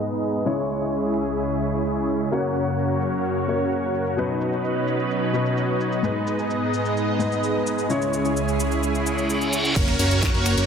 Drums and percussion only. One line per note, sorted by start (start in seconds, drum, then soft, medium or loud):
0.23 cabasa medium
0.34 cabasa soft
0.46 cabasa soft
0.69 cabasa medium
0.81 cabasa soft
0.93 cabasa soft
1.16 cabasa medium
1.27 cabasa soft
1.39 cabasa soft
1.62 cabasa medium
1.74 cabasa soft
1.85 cabasa soft
2.09 cabasa medium
2.20 cabasa soft
2.32 cabasa soft
2.55 cabasa medium
2.67 cabasa soft
2.79 cabasa soft
3.02 cabasa medium
3.13 cabasa soft
3.25 cabasa soft
3.48 cabasa medium
3.60 cabasa soft
3.71 cabasa soft
3.95 cabasa medium
4.06 cabasa soft
4.18 cabasa soft
4.41 cabasa medium
4.53 cabasa soft
4.65 cabasa soft
4.88 cabasa medium
4.99 cabasa soft
5.11 cabasa soft
5.34 cabasa medium
5.46 cabasa soft
5.57 cabasa soft
5.81 cabasa medium
5.92 cabasa soft
6.04 cabasa soft
6.27 cabasa medium
6.39 cabasa soft
6.51 cabasa soft
6.74 cabasa medium
6.85 cabasa soft
6.97 cabasa soft
7.20 cabasa medium
7.32 cabasa soft
7.44 cabasa soft
7.67 cabasa medium
7.78 cabasa soft
7.90 cabasa soft
8.02 cabasa soft
8.13 cabasa medium
8.25 cabasa soft
8.37 cabasa soft
8.48 cabasa soft
8.60 cabasa medium
8.72 cabasa soft
8.83 cabasa soft
8.95 cabasa soft
9.07 cabasa medium
9.18 cabasa soft
9.30 cabasa soft
9.41 cabasa soft
9.53 cabasa medium
9.65 cabasa soft
9.76 kick loud
9.76 closed hi-hat medium
9.76 crash loud
9.76 cabasa soft
9.88 finger snap medium
9.88 closed hi-hat soft
9.99 open hi-hat loud
9.99 cabasa medium
10.11 closed hi-hat soft
10.11 cabasa soft
10.22 kick loud
10.22 snare loud
10.22 closed hi-hat loud
10.22 cabasa soft
10.34 closed hi-hat soft
10.46 finger snap medium
10.46 open hi-hat loud
10.46 cabasa medium
10.58 closed hi-hat soft
10.58 cabasa soft